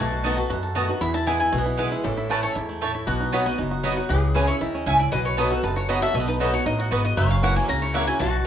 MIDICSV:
0, 0, Header, 1, 7, 480
1, 0, Start_track
1, 0, Tempo, 256520
1, 1901, Time_signature, 4, 2, 24, 8
1, 15847, End_track
2, 0, Start_track
2, 0, Title_t, "Mandolin"
2, 0, Program_c, 0, 25
2, 0, Note_on_c, 0, 81, 88
2, 654, Note_off_c, 0, 81, 0
2, 1890, Note_on_c, 0, 83, 85
2, 2128, Note_off_c, 0, 83, 0
2, 2136, Note_on_c, 0, 81, 93
2, 2366, Note_off_c, 0, 81, 0
2, 2373, Note_on_c, 0, 80, 76
2, 2595, Note_off_c, 0, 80, 0
2, 2618, Note_on_c, 0, 80, 90
2, 3068, Note_off_c, 0, 80, 0
2, 4308, Note_on_c, 0, 71, 67
2, 4539, Note_off_c, 0, 71, 0
2, 4546, Note_on_c, 0, 73, 96
2, 4775, Note_off_c, 0, 73, 0
2, 6229, Note_on_c, 0, 71, 70
2, 6464, Note_off_c, 0, 71, 0
2, 6475, Note_on_c, 0, 75, 105
2, 6700, Note_off_c, 0, 75, 0
2, 8135, Note_on_c, 0, 71, 73
2, 8368, Note_off_c, 0, 71, 0
2, 8376, Note_on_c, 0, 73, 98
2, 8521, Note_off_c, 0, 73, 0
2, 9105, Note_on_c, 0, 76, 83
2, 9340, Note_on_c, 0, 74, 99
2, 9342, Note_off_c, 0, 76, 0
2, 9569, Note_off_c, 0, 74, 0
2, 9577, Note_on_c, 0, 75, 98
2, 9818, Note_off_c, 0, 75, 0
2, 9830, Note_on_c, 0, 73, 94
2, 10057, Note_off_c, 0, 73, 0
2, 10069, Note_on_c, 0, 71, 65
2, 10292, Note_off_c, 0, 71, 0
2, 10299, Note_on_c, 0, 69, 77
2, 10532, Note_off_c, 0, 69, 0
2, 10542, Note_on_c, 0, 71, 71
2, 10773, Note_off_c, 0, 71, 0
2, 10781, Note_on_c, 0, 73, 84
2, 11013, Note_off_c, 0, 73, 0
2, 11020, Note_on_c, 0, 75, 78
2, 11259, Note_off_c, 0, 75, 0
2, 11272, Note_on_c, 0, 76, 121
2, 11498, Note_off_c, 0, 76, 0
2, 11503, Note_on_c, 0, 75, 87
2, 11740, Note_off_c, 0, 75, 0
2, 11749, Note_on_c, 0, 71, 84
2, 11977, Note_off_c, 0, 71, 0
2, 11991, Note_on_c, 0, 69, 70
2, 12225, Note_off_c, 0, 69, 0
2, 12234, Note_on_c, 0, 73, 93
2, 12459, Note_off_c, 0, 73, 0
2, 12467, Note_on_c, 0, 75, 94
2, 12702, Note_off_c, 0, 75, 0
2, 12721, Note_on_c, 0, 66, 72
2, 12943, Note_off_c, 0, 66, 0
2, 12948, Note_on_c, 0, 71, 74
2, 13181, Note_off_c, 0, 71, 0
2, 13189, Note_on_c, 0, 75, 98
2, 13416, Note_off_c, 0, 75, 0
2, 13431, Note_on_c, 0, 76, 89
2, 13663, Note_off_c, 0, 76, 0
2, 13671, Note_on_c, 0, 77, 90
2, 13898, Note_off_c, 0, 77, 0
2, 13912, Note_on_c, 0, 78, 83
2, 14145, Note_off_c, 0, 78, 0
2, 14153, Note_on_c, 0, 80, 86
2, 14379, Note_off_c, 0, 80, 0
2, 14393, Note_on_c, 0, 82, 101
2, 14625, Note_off_c, 0, 82, 0
2, 14632, Note_on_c, 0, 73, 78
2, 14858, Note_off_c, 0, 73, 0
2, 14861, Note_on_c, 0, 76, 89
2, 15099, Note_off_c, 0, 76, 0
2, 15107, Note_on_c, 0, 80, 101
2, 15328, Note_off_c, 0, 80, 0
2, 15336, Note_on_c, 0, 81, 95
2, 15847, Note_off_c, 0, 81, 0
2, 15847, End_track
3, 0, Start_track
3, 0, Title_t, "Mandolin"
3, 0, Program_c, 1, 25
3, 443, Note_on_c, 1, 59, 88
3, 455, Note_on_c, 1, 66, 104
3, 458, Note_on_c, 1, 75, 95
3, 468, Note_on_c, 1, 81, 100
3, 623, Note_off_c, 1, 59, 0
3, 629, Note_off_c, 1, 66, 0
3, 631, Note_off_c, 1, 75, 0
3, 636, Note_off_c, 1, 81, 0
3, 1404, Note_on_c, 1, 59, 91
3, 1417, Note_on_c, 1, 66, 88
3, 1424, Note_on_c, 1, 75, 99
3, 1429, Note_on_c, 1, 81, 110
3, 1584, Note_off_c, 1, 59, 0
3, 1591, Note_off_c, 1, 66, 0
3, 1594, Note_off_c, 1, 75, 0
3, 1597, Note_off_c, 1, 81, 0
3, 2370, Note_on_c, 1, 59, 90
3, 2383, Note_on_c, 1, 64, 103
3, 2387, Note_on_c, 1, 71, 89
3, 2398, Note_on_c, 1, 80, 106
3, 2547, Note_off_c, 1, 59, 0
3, 2554, Note_off_c, 1, 64, 0
3, 2556, Note_off_c, 1, 71, 0
3, 2561, Note_off_c, 1, 80, 0
3, 3322, Note_on_c, 1, 59, 87
3, 3333, Note_on_c, 1, 64, 85
3, 3346, Note_on_c, 1, 71, 98
3, 3349, Note_on_c, 1, 80, 95
3, 3504, Note_off_c, 1, 59, 0
3, 3509, Note_off_c, 1, 64, 0
3, 3515, Note_off_c, 1, 71, 0
3, 3517, Note_off_c, 1, 80, 0
3, 4298, Note_on_c, 1, 57, 81
3, 4306, Note_on_c, 1, 64, 96
3, 4317, Note_on_c, 1, 73, 99
3, 4319, Note_on_c, 1, 81, 115
3, 4472, Note_off_c, 1, 57, 0
3, 4476, Note_off_c, 1, 64, 0
3, 4481, Note_off_c, 1, 73, 0
3, 4482, Note_off_c, 1, 81, 0
3, 5264, Note_on_c, 1, 57, 84
3, 5276, Note_on_c, 1, 64, 107
3, 5282, Note_on_c, 1, 73, 94
3, 5290, Note_on_c, 1, 81, 96
3, 5435, Note_off_c, 1, 57, 0
3, 5441, Note_off_c, 1, 64, 0
3, 5444, Note_off_c, 1, 73, 0
3, 5448, Note_off_c, 1, 81, 0
3, 6221, Note_on_c, 1, 59, 97
3, 6231, Note_on_c, 1, 66, 96
3, 6238, Note_on_c, 1, 75, 100
3, 6246, Note_on_c, 1, 83, 106
3, 6394, Note_off_c, 1, 59, 0
3, 6399, Note_off_c, 1, 66, 0
3, 6402, Note_off_c, 1, 75, 0
3, 6406, Note_off_c, 1, 83, 0
3, 7175, Note_on_c, 1, 59, 99
3, 7185, Note_on_c, 1, 66, 96
3, 7195, Note_on_c, 1, 75, 102
3, 7201, Note_on_c, 1, 83, 96
3, 7351, Note_off_c, 1, 59, 0
3, 7356, Note_off_c, 1, 66, 0
3, 7361, Note_off_c, 1, 75, 0
3, 7364, Note_off_c, 1, 83, 0
3, 8129, Note_on_c, 1, 61, 82
3, 8142, Note_on_c, 1, 68, 96
3, 8150, Note_on_c, 1, 76, 101
3, 8156, Note_on_c, 1, 80, 98
3, 8308, Note_off_c, 1, 61, 0
3, 8315, Note_off_c, 1, 68, 0
3, 8319, Note_off_c, 1, 76, 0
3, 8322, Note_off_c, 1, 80, 0
3, 9101, Note_on_c, 1, 61, 95
3, 9111, Note_on_c, 1, 68, 106
3, 9120, Note_on_c, 1, 76, 88
3, 9126, Note_on_c, 1, 80, 109
3, 9274, Note_off_c, 1, 61, 0
3, 9279, Note_off_c, 1, 68, 0
3, 9284, Note_off_c, 1, 76, 0
3, 9287, Note_off_c, 1, 80, 0
3, 10050, Note_on_c, 1, 59, 98
3, 10063, Note_on_c, 1, 66, 96
3, 10071, Note_on_c, 1, 75, 111
3, 10078, Note_on_c, 1, 83, 102
3, 10229, Note_off_c, 1, 59, 0
3, 10235, Note_off_c, 1, 66, 0
3, 10239, Note_off_c, 1, 75, 0
3, 10243, Note_off_c, 1, 83, 0
3, 11014, Note_on_c, 1, 59, 101
3, 11024, Note_on_c, 1, 66, 103
3, 11033, Note_on_c, 1, 75, 103
3, 11039, Note_on_c, 1, 83, 104
3, 11191, Note_off_c, 1, 59, 0
3, 11195, Note_off_c, 1, 66, 0
3, 11200, Note_off_c, 1, 75, 0
3, 11203, Note_off_c, 1, 83, 0
3, 11970, Note_on_c, 1, 59, 86
3, 11984, Note_on_c, 1, 66, 96
3, 11990, Note_on_c, 1, 75, 102
3, 11995, Note_on_c, 1, 83, 108
3, 12148, Note_off_c, 1, 59, 0
3, 12155, Note_off_c, 1, 66, 0
3, 12158, Note_off_c, 1, 75, 0
3, 12161, Note_off_c, 1, 83, 0
3, 12931, Note_on_c, 1, 59, 106
3, 12941, Note_on_c, 1, 66, 100
3, 12950, Note_on_c, 1, 75, 85
3, 12957, Note_on_c, 1, 83, 90
3, 13109, Note_off_c, 1, 59, 0
3, 13114, Note_off_c, 1, 66, 0
3, 13118, Note_off_c, 1, 75, 0
3, 13122, Note_off_c, 1, 83, 0
3, 13903, Note_on_c, 1, 58, 94
3, 13911, Note_on_c, 1, 64, 95
3, 13919, Note_on_c, 1, 73, 89
3, 13926, Note_on_c, 1, 78, 102
3, 14074, Note_off_c, 1, 58, 0
3, 14079, Note_off_c, 1, 64, 0
3, 14083, Note_off_c, 1, 73, 0
3, 14086, Note_off_c, 1, 78, 0
3, 14853, Note_on_c, 1, 58, 97
3, 14862, Note_on_c, 1, 64, 85
3, 14874, Note_on_c, 1, 73, 102
3, 14879, Note_on_c, 1, 78, 98
3, 15029, Note_off_c, 1, 58, 0
3, 15034, Note_off_c, 1, 64, 0
3, 15040, Note_off_c, 1, 73, 0
3, 15043, Note_off_c, 1, 78, 0
3, 15847, End_track
4, 0, Start_track
4, 0, Title_t, "Resonator guitar played with a steel bar"
4, 0, Program_c, 2, 25
4, 0, Note_on_c, 2, 66, 102
4, 1820, Note_off_c, 2, 66, 0
4, 1892, Note_on_c, 2, 64, 83
4, 3507, Note_off_c, 2, 64, 0
4, 3825, Note_on_c, 2, 69, 95
4, 5670, Note_off_c, 2, 69, 0
4, 5741, Note_on_c, 2, 66, 98
4, 7588, Note_off_c, 2, 66, 0
4, 7654, Note_on_c, 2, 68, 89
4, 9588, Note_on_c, 2, 71, 101
4, 9637, Note_off_c, 2, 68, 0
4, 13416, Note_on_c, 2, 73, 119
4, 13540, Note_off_c, 2, 71, 0
4, 14801, Note_off_c, 2, 73, 0
4, 14801, Note_on_c, 2, 71, 119
4, 15347, Note_on_c, 2, 66, 105
4, 15397, Note_off_c, 2, 71, 0
4, 15847, Note_off_c, 2, 66, 0
4, 15847, End_track
5, 0, Start_track
5, 0, Title_t, "Five-string banjo"
5, 0, Program_c, 3, 105
5, 0, Note_on_c, 3, 57, 76
5, 226, Note_on_c, 3, 66, 57
5, 450, Note_on_c, 3, 63, 56
5, 656, Note_off_c, 3, 57, 0
5, 694, Note_on_c, 3, 69, 58
5, 894, Note_off_c, 3, 66, 0
5, 933, Note_on_c, 3, 66, 74
5, 1131, Note_off_c, 3, 63, 0
5, 1157, Note_off_c, 3, 69, 0
5, 1179, Note_on_c, 3, 69, 56
5, 1397, Note_off_c, 3, 66, 0
5, 1419, Note_on_c, 3, 66, 57
5, 1659, Note_on_c, 3, 63, 55
5, 1851, Note_off_c, 3, 69, 0
5, 1886, Note_off_c, 3, 66, 0
5, 1893, Note_on_c, 3, 64, 66
5, 1898, Note_off_c, 3, 63, 0
5, 2120, Note_off_c, 3, 64, 0
5, 2143, Note_on_c, 3, 64, 63
5, 2360, Note_off_c, 3, 64, 0
5, 2382, Note_on_c, 3, 64, 62
5, 2600, Note_off_c, 3, 64, 0
5, 2623, Note_on_c, 3, 64, 58
5, 2854, Note_on_c, 3, 57, 68
5, 2957, Note_off_c, 3, 57, 0
5, 2957, Note_on_c, 3, 59, 66
5, 3082, Note_off_c, 3, 64, 0
5, 3104, Note_on_c, 3, 64, 60
5, 3320, Note_off_c, 3, 64, 0
5, 3341, Note_off_c, 3, 59, 0
5, 3342, Note_on_c, 3, 64, 61
5, 3568, Note_off_c, 3, 64, 0
5, 3590, Note_on_c, 3, 64, 58
5, 3824, Note_off_c, 3, 64, 0
5, 3824, Note_on_c, 3, 52, 62
5, 4069, Note_on_c, 3, 64, 68
5, 4306, Note_on_c, 3, 57, 58
5, 4499, Note_off_c, 3, 52, 0
5, 4552, Note_on_c, 3, 69, 57
5, 4737, Note_off_c, 3, 64, 0
5, 4792, Note_on_c, 3, 64, 70
5, 4980, Note_off_c, 3, 57, 0
5, 5036, Note_on_c, 3, 57, 59
5, 5218, Note_off_c, 3, 69, 0
5, 5276, Note_on_c, 3, 69, 60
5, 5464, Note_off_c, 3, 64, 0
5, 5515, Note_on_c, 3, 64, 61
5, 5700, Note_off_c, 3, 57, 0
5, 5747, Note_off_c, 3, 64, 0
5, 5750, Note_off_c, 3, 69, 0
5, 5752, Note_on_c, 3, 59, 80
5, 5996, Note_on_c, 3, 63, 63
5, 6239, Note_on_c, 3, 66, 61
5, 6424, Note_off_c, 3, 59, 0
5, 6473, Note_on_c, 3, 59, 71
5, 6661, Note_off_c, 3, 63, 0
5, 6702, Note_on_c, 3, 63, 67
5, 6907, Note_off_c, 3, 66, 0
5, 6948, Note_on_c, 3, 66, 62
5, 7139, Note_off_c, 3, 59, 0
5, 7182, Note_on_c, 3, 59, 70
5, 7379, Note_off_c, 3, 63, 0
5, 7410, Note_off_c, 3, 66, 0
5, 7432, Note_on_c, 3, 66, 59
5, 7663, Note_off_c, 3, 59, 0
5, 7666, Note_off_c, 3, 66, 0
5, 7675, Note_on_c, 3, 52, 67
5, 8154, Note_on_c, 3, 61, 66
5, 8345, Note_off_c, 3, 52, 0
5, 8403, Note_on_c, 3, 64, 62
5, 8613, Note_off_c, 3, 64, 0
5, 8635, Note_on_c, 3, 64, 74
5, 8825, Note_off_c, 3, 61, 0
5, 8882, Note_on_c, 3, 61, 60
5, 9092, Note_off_c, 3, 64, 0
5, 9114, Note_on_c, 3, 64, 61
5, 9341, Note_off_c, 3, 64, 0
5, 9364, Note_on_c, 3, 64, 55
5, 9543, Note_off_c, 3, 61, 0
5, 9591, Note_off_c, 3, 64, 0
5, 9594, Note_on_c, 3, 54, 69
5, 10071, Note_on_c, 3, 69, 62
5, 10315, Note_on_c, 3, 66, 56
5, 10527, Note_off_c, 3, 69, 0
5, 10549, Note_on_c, 3, 69, 65
5, 10782, Note_off_c, 3, 66, 0
5, 10789, Note_on_c, 3, 66, 60
5, 11025, Note_on_c, 3, 59, 72
5, 11222, Note_off_c, 3, 69, 0
5, 11272, Note_on_c, 3, 69, 62
5, 11494, Note_off_c, 3, 59, 0
5, 11502, Note_on_c, 3, 57, 70
5, 11598, Note_off_c, 3, 57, 0
5, 11598, Note_on_c, 3, 59, 79
5, 11744, Note_on_c, 3, 63, 59
5, 11938, Note_off_c, 3, 69, 0
5, 11975, Note_off_c, 3, 66, 0
5, 11982, Note_off_c, 3, 59, 0
5, 11982, Note_on_c, 3, 66, 61
5, 12213, Note_off_c, 3, 54, 0
5, 12232, Note_on_c, 3, 59, 64
5, 12414, Note_off_c, 3, 63, 0
5, 12459, Note_on_c, 3, 63, 70
5, 12695, Note_off_c, 3, 66, 0
5, 12703, Note_on_c, 3, 66, 60
5, 12898, Note_off_c, 3, 59, 0
5, 12937, Note_on_c, 3, 59, 71
5, 13137, Note_off_c, 3, 63, 0
5, 13175, Note_off_c, 3, 66, 0
5, 13182, Note_on_c, 3, 66, 57
5, 13414, Note_off_c, 3, 59, 0
5, 13422, Note_on_c, 3, 58, 84
5, 13667, Note_on_c, 3, 61, 61
5, 13895, Note_off_c, 3, 66, 0
5, 13902, Note_on_c, 3, 64, 64
5, 14098, Note_off_c, 3, 58, 0
5, 14147, Note_on_c, 3, 58, 78
5, 14335, Note_off_c, 3, 61, 0
5, 14376, Note_on_c, 3, 61, 76
5, 14578, Note_off_c, 3, 64, 0
5, 14630, Note_on_c, 3, 64, 62
5, 14815, Note_off_c, 3, 58, 0
5, 14875, Note_on_c, 3, 58, 75
5, 15055, Note_off_c, 3, 61, 0
5, 15097, Note_off_c, 3, 64, 0
5, 15119, Note_on_c, 3, 64, 62
5, 15349, Note_off_c, 3, 58, 0
5, 15349, Note_off_c, 3, 64, 0
5, 15351, Note_on_c, 3, 54, 70
5, 15847, Note_off_c, 3, 54, 0
5, 15847, End_track
6, 0, Start_track
6, 0, Title_t, "Steel-string acoustic guitar"
6, 0, Program_c, 4, 25
6, 0, Note_on_c, 4, 47, 94
6, 451, Note_on_c, 4, 51, 86
6, 464, Note_on_c, 4, 57, 92
6, 475, Note_on_c, 4, 59, 94
6, 488, Note_on_c, 4, 66, 103
6, 681, Note_off_c, 4, 66, 0
6, 691, Note_off_c, 4, 51, 0
6, 697, Note_off_c, 4, 57, 0
6, 703, Note_off_c, 4, 59, 0
6, 703, Note_on_c, 4, 66, 55
6, 737, Note_on_c, 4, 59, 48
6, 890, Note_off_c, 4, 47, 0
6, 930, Note_off_c, 4, 66, 0
6, 938, Note_on_c, 4, 42, 101
6, 947, Note_off_c, 4, 59, 0
6, 1404, Note_on_c, 4, 51, 83
6, 1417, Note_on_c, 4, 57, 87
6, 1430, Note_on_c, 4, 59, 101
6, 1438, Note_on_c, 4, 66, 95
6, 1627, Note_off_c, 4, 66, 0
6, 1647, Note_off_c, 4, 51, 0
6, 1649, Note_on_c, 4, 66, 55
6, 1654, Note_off_c, 4, 57, 0
6, 1660, Note_off_c, 4, 59, 0
6, 1683, Note_on_c, 4, 59, 50
6, 1852, Note_off_c, 4, 42, 0
6, 1883, Note_off_c, 4, 66, 0
6, 1897, Note_on_c, 4, 40, 98
6, 1900, Note_off_c, 4, 59, 0
6, 2363, Note_on_c, 4, 52, 89
6, 2378, Note_on_c, 4, 56, 88
6, 2389, Note_on_c, 4, 59, 89
6, 2399, Note_on_c, 4, 64, 94
6, 2585, Note_off_c, 4, 64, 0
6, 2607, Note_off_c, 4, 52, 0
6, 2607, Note_on_c, 4, 64, 57
6, 2615, Note_off_c, 4, 56, 0
6, 2620, Note_off_c, 4, 59, 0
6, 2646, Note_on_c, 4, 59, 53
6, 2812, Note_off_c, 4, 40, 0
6, 2843, Note_off_c, 4, 64, 0
6, 2850, Note_on_c, 4, 47, 104
6, 2862, Note_off_c, 4, 59, 0
6, 3337, Note_on_c, 4, 52, 82
6, 3347, Note_on_c, 4, 56, 95
6, 3361, Note_on_c, 4, 59, 94
6, 3372, Note_on_c, 4, 64, 93
6, 3769, Note_off_c, 4, 47, 0
6, 3796, Note_off_c, 4, 52, 0
6, 3801, Note_off_c, 4, 56, 0
6, 3808, Note_off_c, 4, 59, 0
6, 3814, Note_off_c, 4, 64, 0
6, 3819, Note_on_c, 4, 45, 92
6, 4294, Note_on_c, 4, 52, 84
6, 4310, Note_on_c, 4, 57, 89
6, 4318, Note_on_c, 4, 61, 96
6, 4329, Note_on_c, 4, 64, 97
6, 4734, Note_off_c, 4, 45, 0
6, 4755, Note_off_c, 4, 52, 0
6, 4763, Note_off_c, 4, 57, 0
6, 4767, Note_off_c, 4, 61, 0
6, 4772, Note_off_c, 4, 64, 0
6, 4773, Note_on_c, 4, 44, 100
6, 5235, Note_off_c, 4, 44, 0
6, 5271, Note_on_c, 4, 45, 83
6, 5724, Note_off_c, 4, 45, 0
6, 5745, Note_on_c, 4, 47, 92
6, 6222, Note_on_c, 4, 54, 95
6, 6235, Note_on_c, 4, 59, 86
6, 6248, Note_on_c, 4, 63, 88
6, 6255, Note_on_c, 4, 66, 103
6, 6448, Note_off_c, 4, 66, 0
6, 6458, Note_off_c, 4, 54, 0
6, 6464, Note_off_c, 4, 59, 0
6, 6470, Note_on_c, 4, 66, 55
6, 6471, Note_off_c, 4, 63, 0
6, 6504, Note_on_c, 4, 63, 50
6, 6658, Note_off_c, 4, 47, 0
6, 6695, Note_off_c, 4, 66, 0
6, 6711, Note_on_c, 4, 42, 94
6, 6712, Note_off_c, 4, 63, 0
6, 7177, Note_on_c, 4, 54, 91
6, 7193, Note_on_c, 4, 59, 90
6, 7205, Note_on_c, 4, 63, 90
6, 7214, Note_on_c, 4, 66, 88
6, 7399, Note_off_c, 4, 66, 0
6, 7415, Note_off_c, 4, 54, 0
6, 7422, Note_on_c, 4, 66, 57
6, 7423, Note_off_c, 4, 59, 0
6, 7429, Note_off_c, 4, 63, 0
6, 7453, Note_on_c, 4, 63, 52
6, 7621, Note_off_c, 4, 42, 0
6, 7651, Note_off_c, 4, 66, 0
6, 7667, Note_off_c, 4, 63, 0
6, 7678, Note_on_c, 4, 49, 107
6, 8134, Note_on_c, 4, 52, 98
6, 8151, Note_on_c, 4, 56, 102
6, 8161, Note_on_c, 4, 61, 95
6, 8170, Note_on_c, 4, 64, 103
6, 8354, Note_off_c, 4, 64, 0
6, 8374, Note_off_c, 4, 52, 0
6, 8376, Note_on_c, 4, 64, 57
6, 8382, Note_off_c, 4, 56, 0
6, 8387, Note_off_c, 4, 61, 0
6, 8407, Note_on_c, 4, 61, 50
6, 8584, Note_off_c, 4, 49, 0
6, 8608, Note_off_c, 4, 64, 0
6, 8623, Note_on_c, 4, 51, 100
6, 8624, Note_off_c, 4, 61, 0
6, 9080, Note_off_c, 4, 51, 0
6, 9098, Note_on_c, 4, 45, 83
6, 9557, Note_off_c, 4, 45, 0
6, 9582, Note_on_c, 4, 47, 100
6, 10060, Note_on_c, 4, 54, 87
6, 10074, Note_on_c, 4, 59, 91
6, 10083, Note_on_c, 4, 63, 99
6, 10093, Note_on_c, 4, 66, 107
6, 10283, Note_off_c, 4, 66, 0
6, 10297, Note_off_c, 4, 54, 0
6, 10304, Note_off_c, 4, 59, 0
6, 10305, Note_on_c, 4, 66, 58
6, 10308, Note_off_c, 4, 63, 0
6, 10338, Note_on_c, 4, 63, 44
6, 10496, Note_off_c, 4, 47, 0
6, 10533, Note_off_c, 4, 66, 0
6, 10545, Note_on_c, 4, 42, 98
6, 10549, Note_off_c, 4, 63, 0
6, 11012, Note_on_c, 4, 54, 88
6, 11027, Note_on_c, 4, 59, 82
6, 11039, Note_on_c, 4, 63, 90
6, 11050, Note_on_c, 4, 66, 91
6, 11233, Note_off_c, 4, 66, 0
6, 11253, Note_off_c, 4, 54, 0
6, 11255, Note_on_c, 4, 66, 67
6, 11260, Note_off_c, 4, 59, 0
6, 11266, Note_off_c, 4, 63, 0
6, 11291, Note_on_c, 4, 63, 49
6, 11457, Note_off_c, 4, 42, 0
6, 11487, Note_off_c, 4, 66, 0
6, 11502, Note_on_c, 4, 47, 101
6, 11506, Note_off_c, 4, 63, 0
6, 11978, Note_on_c, 4, 54, 86
6, 11991, Note_on_c, 4, 59, 89
6, 11999, Note_on_c, 4, 63, 90
6, 12014, Note_on_c, 4, 66, 85
6, 12201, Note_off_c, 4, 66, 0
6, 12215, Note_off_c, 4, 54, 0
6, 12222, Note_off_c, 4, 59, 0
6, 12223, Note_on_c, 4, 66, 55
6, 12226, Note_off_c, 4, 63, 0
6, 12257, Note_on_c, 4, 63, 45
6, 12415, Note_off_c, 4, 47, 0
6, 12452, Note_off_c, 4, 66, 0
6, 12465, Note_on_c, 4, 45, 96
6, 12469, Note_off_c, 4, 63, 0
6, 12920, Note_off_c, 4, 45, 0
6, 12943, Note_on_c, 4, 44, 83
6, 13400, Note_off_c, 4, 44, 0
6, 13424, Note_on_c, 4, 42, 102
6, 13893, Note_on_c, 4, 52, 98
6, 13907, Note_on_c, 4, 58, 92
6, 13914, Note_on_c, 4, 61, 94
6, 13928, Note_on_c, 4, 66, 94
6, 14336, Note_off_c, 4, 42, 0
6, 14355, Note_off_c, 4, 52, 0
6, 14361, Note_off_c, 4, 58, 0
6, 14365, Note_off_c, 4, 61, 0
6, 14372, Note_off_c, 4, 66, 0
6, 14384, Note_on_c, 4, 49, 97
6, 14860, Note_on_c, 4, 52, 87
6, 14872, Note_on_c, 4, 58, 92
6, 14880, Note_on_c, 4, 61, 91
6, 14893, Note_on_c, 4, 66, 86
6, 15085, Note_off_c, 4, 66, 0
6, 15096, Note_off_c, 4, 52, 0
6, 15102, Note_off_c, 4, 58, 0
6, 15106, Note_off_c, 4, 61, 0
6, 15108, Note_on_c, 4, 66, 69
6, 15141, Note_on_c, 4, 61, 49
6, 15296, Note_off_c, 4, 49, 0
6, 15333, Note_off_c, 4, 66, 0
6, 15344, Note_on_c, 4, 47, 102
6, 15350, Note_off_c, 4, 61, 0
6, 15847, Note_off_c, 4, 47, 0
6, 15847, End_track
7, 0, Start_track
7, 0, Title_t, "Upright bass"
7, 0, Program_c, 5, 32
7, 0, Note_on_c, 5, 35, 92
7, 721, Note_off_c, 5, 35, 0
7, 932, Note_on_c, 5, 42, 78
7, 1681, Note_off_c, 5, 42, 0
7, 1888, Note_on_c, 5, 40, 98
7, 2639, Note_off_c, 5, 40, 0
7, 2859, Note_on_c, 5, 35, 76
7, 3606, Note_off_c, 5, 35, 0
7, 3829, Note_on_c, 5, 33, 91
7, 4572, Note_off_c, 5, 33, 0
7, 4785, Note_on_c, 5, 40, 77
7, 5530, Note_off_c, 5, 40, 0
7, 5747, Note_on_c, 5, 35, 93
7, 6491, Note_off_c, 5, 35, 0
7, 6704, Note_on_c, 5, 30, 79
7, 7450, Note_off_c, 5, 30, 0
7, 7666, Note_on_c, 5, 37, 97
7, 8411, Note_off_c, 5, 37, 0
7, 8624, Note_on_c, 5, 39, 77
7, 9032, Note_off_c, 5, 39, 0
7, 9100, Note_on_c, 5, 37, 96
7, 9510, Note_off_c, 5, 37, 0
7, 9583, Note_on_c, 5, 35, 101
7, 10329, Note_off_c, 5, 35, 0
7, 10532, Note_on_c, 5, 30, 77
7, 11282, Note_off_c, 5, 30, 0
7, 11491, Note_on_c, 5, 35, 94
7, 12241, Note_off_c, 5, 35, 0
7, 12454, Note_on_c, 5, 33, 83
7, 12866, Note_off_c, 5, 33, 0
7, 12943, Note_on_c, 5, 32, 90
7, 13351, Note_off_c, 5, 32, 0
7, 13420, Note_on_c, 5, 30, 105
7, 14166, Note_off_c, 5, 30, 0
7, 14383, Note_on_c, 5, 37, 74
7, 15128, Note_off_c, 5, 37, 0
7, 15343, Note_on_c, 5, 35, 95
7, 15716, Note_off_c, 5, 35, 0
7, 15847, End_track
0, 0, End_of_file